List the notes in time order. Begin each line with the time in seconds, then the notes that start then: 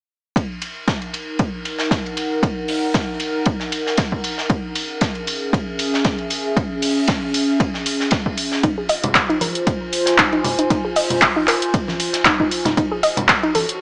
0.36 D#4, kick, ride
0.61 A#4, open hi-hat, ride
0.88 kick, snare, ride
1.02 ride
1.13 open hi-hat, ride
1.38 F#5, kick, ride
1.65 open hi-hat, ride
1.79 snare
1.91 kick, snare, ride
2.06 ride
2.17 open hi-hat, ride
2.43 kick, ride
2.68 open hi-hat
2.94 kick, snare, ride
3.20 open hi-hat, ride
3.46 kick, ride
3.60 snare
3.72 open hi-hat, ride
3.87 snare
3.98 kick, snare, ride
4.12 kick
4.24 open hi-hat, ride
4.38 snare
4.50 C#4, kick, ride
4.63 E5
4.71 G#4
4.75 open hi-hat, ride
5.01 kick, snare, ride
5.15 ride
5.27 open hi-hat, ride
5.53 kick, ride
5.79 open hi-hat, ride
5.94 snare
6.05 kick, snare, ride
6.18 ride
6.30 open hi-hat, ride
6.57 kick, ride
6.82 open hi-hat
7.08 kick, snare, ride
7.34 open hi-hat, ride
7.60 kick, ride
7.74 snare
7.86 open hi-hat, ride
8.00 snare
8.11 kick, snare, ride
8.26 kick
8.37 F4, open hi-hat, ride
8.52 snare
8.56 C5
8.63 D#4, kick, closed hi-hat, ride
8.78 G#4
8.89 D#5, open hi-hat, ride
9.04 closed hi-hat, low conga
9.15 kick, snare, clap, closed hi-hat, ride
9.22 G#5
9.29 D#4, ride
9.41 A#4, open hi-hat, ride, high conga
9.55 closed hi-hat
9.67 kick, closed hi-hat, ride
9.93 open hi-hat, ride
10.06 snare, closed hi-hat
10.18 D#4, kick, snare, clap, closed hi-hat, ride
10.32 D#4, ride
10.44 open hi-hat, ride, low conga
10.59 D#4, closed hi-hat
10.70 D#4, kick, closed hi-hat, ride
10.85 G#4
10.96 D#5, open hi-hat
11.10 closed hi-hat, low conga
11.21 kick, snare, clap, closed hi-hat, ride
11.36 D#4
11.48 A#4, clap, open hi-hat, ride
11.62 closed hi-hat
11.74 kick, closed hi-hat, ride
11.88 snare, high conga
12.00 open hi-hat, ride
12.13 snare, closed hi-hat
12.25 D#4, kick, snare, clap, closed hi-hat, ride
12.40 D#4, kick
12.51 open hi-hat, ride
12.65 D#4, snare, closed hi-hat, low conga
12.77 D#4 F#4, kick, closed hi-hat, ride
12.91 G#4
13.03 D#5, open hi-hat, ride
13.13 C#5, low conga
13.17 closed hi-hat
13.29 A5, kick, snare, clap, closed hi-hat, ride
13.43 D#4, ride
13.55 A4, open hi-hat, ride, high conga
13.69 closed hi-hat